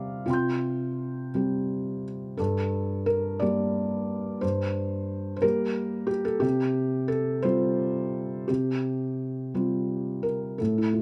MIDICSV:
0, 0, Header, 1, 2, 480
1, 0, Start_track
1, 0, Tempo, 700117
1, 189, Time_signature, 6, 3, 24, 8
1, 2108, Tempo, 672646
1, 5468, Tempo, 700117
1, 7686, End_track
2, 0, Start_track
2, 0, Title_t, "Felt piano"
2, 0, Program_c, 0, 0
2, 0, Control_c, 0, 64, 127
2, 0, Note_on_c, 0, 48, 52
2, 0, Note_on_c, 0, 55, 39
2, 0, Note_on_c, 0, 60, 40
2, 0, Note_on_c, 0, 67, 45
2, 0, Note_on_c, 0, 72, 67
2, 0, Note_on_c, 0, 74, 69
2, 0, Note_on_c, 0, 76, 70
2, 0, Note_on_c, 0, 77, 73
2, 165, Note_off_c, 0, 55, 0
2, 166, Note_off_c, 0, 60, 0
2, 166, Note_off_c, 0, 67, 0
2, 176, Note_on_c, 0, 65, 48
2, 185, Note_off_c, 0, 48, 0
2, 185, Note_off_c, 0, 77, 0
2, 185, Note_on_c, 0, 48, 38
2, 187, Note_on_c, 0, 79, 25
2, 201, Control_c, 0, 64, 0
2, 207, Note_on_c, 0, 84, 27
2, 208, Note_off_c, 0, 72, 0
2, 208, Note_off_c, 0, 74, 0
2, 208, Note_off_c, 0, 76, 0
2, 229, Note_on_c, 0, 91, 27
2, 322, Control_c, 0, 64, 127
2, 890, Note_off_c, 0, 48, 0
2, 921, Note_on_c, 0, 60, 33
2, 922, Note_on_c, 0, 55, 34
2, 931, Note_on_c, 0, 67, 33
2, 1389, Note_off_c, 0, 65, 0
2, 1607, Note_off_c, 0, 79, 0
2, 1612, Note_off_c, 0, 60, 0
2, 1613, Note_off_c, 0, 55, 0
2, 1617, Note_off_c, 0, 67, 0
2, 1618, Note_off_c, 0, 84, 0
2, 1628, Note_off_c, 0, 91, 0
2, 1628, Note_on_c, 0, 69, 58
2, 1641, Note_on_c, 0, 43, 47
2, 1648, Control_c, 0, 64, 0
2, 1753, Control_c, 0, 64, 127
2, 2099, Note_on_c, 0, 70, 64
2, 2104, Note_off_c, 0, 69, 0
2, 2332, Note_off_c, 0, 43, 0
2, 2337, Note_on_c, 0, 74, 78
2, 2346, Note_off_c, 0, 70, 0
2, 2353, Note_on_c, 0, 55, 37
2, 2353, Note_on_c, 0, 58, 42
2, 2356, Note_on_c, 0, 67, 40
2, 3047, Note_off_c, 0, 55, 0
2, 3047, Note_off_c, 0, 58, 0
2, 3048, Note_off_c, 0, 67, 0
2, 3062, Note_on_c, 0, 72, 67
2, 3067, Note_off_c, 0, 74, 0
2, 3071, Note_on_c, 0, 43, 44
2, 3085, Control_c, 0, 64, 0
2, 3195, Control_c, 0, 64, 127
2, 3732, Note_off_c, 0, 72, 0
2, 3742, Note_on_c, 0, 72, 52
2, 3766, Note_off_c, 0, 43, 0
2, 3780, Note_on_c, 0, 70, 80
2, 3790, Note_off_c, 0, 72, 0
2, 3790, Note_on_c, 0, 55, 41
2, 3794, Note_on_c, 0, 67, 50
2, 3797, Note_on_c, 0, 58, 44
2, 3800, Control_c, 0, 64, 0
2, 3933, Control_c, 0, 64, 127
2, 4232, Note_off_c, 0, 67, 0
2, 4243, Note_on_c, 0, 67, 70
2, 4260, Note_off_c, 0, 70, 0
2, 4372, Note_off_c, 0, 67, 0
2, 4372, Note_on_c, 0, 69, 71
2, 4474, Note_off_c, 0, 55, 0
2, 4477, Note_off_c, 0, 58, 0
2, 4480, Note_on_c, 0, 67, 70
2, 4492, Note_on_c, 0, 48, 53
2, 4496, Note_off_c, 0, 69, 0
2, 4516, Control_c, 0, 64, 0
2, 4614, Control_c, 0, 64, 127
2, 4966, Note_on_c, 0, 69, 76
2, 4969, Note_off_c, 0, 67, 0
2, 5195, Note_off_c, 0, 48, 0
2, 5212, Note_on_c, 0, 72, 85
2, 5215, Note_off_c, 0, 69, 0
2, 5225, Note_on_c, 0, 55, 47
2, 5230, Note_on_c, 0, 60, 49
2, 5231, Note_on_c, 0, 65, 57
2, 5925, Note_off_c, 0, 55, 0
2, 5927, Note_off_c, 0, 60, 0
2, 5927, Note_off_c, 0, 65, 0
2, 5944, Note_on_c, 0, 67, 52
2, 5946, Note_off_c, 0, 72, 0
2, 5957, Note_on_c, 0, 48, 43
2, 5963, Control_c, 0, 64, 0
2, 6093, Control_c, 0, 64, 127
2, 6653, Note_off_c, 0, 48, 0
2, 6675, Note_on_c, 0, 55, 35
2, 6677, Note_on_c, 0, 65, 38
2, 6680, Note_on_c, 0, 60, 37
2, 7144, Note_on_c, 0, 70, 51
2, 7153, Note_off_c, 0, 67, 0
2, 7371, Note_off_c, 0, 55, 0
2, 7372, Note_off_c, 0, 65, 0
2, 7374, Note_off_c, 0, 60, 0
2, 7387, Note_on_c, 0, 69, 50
2, 7390, Note_off_c, 0, 70, 0
2, 7406, Note_on_c, 0, 45, 43
2, 7407, Control_c, 0, 64, 0
2, 7522, Note_on_c, 0, 64, 40
2, 7537, Control_c, 0, 64, 127
2, 7628, Note_on_c, 0, 65, 35
2, 7686, Note_off_c, 0, 45, 0
2, 7686, Note_off_c, 0, 64, 0
2, 7686, Note_off_c, 0, 65, 0
2, 7686, Note_off_c, 0, 69, 0
2, 7686, End_track
0, 0, End_of_file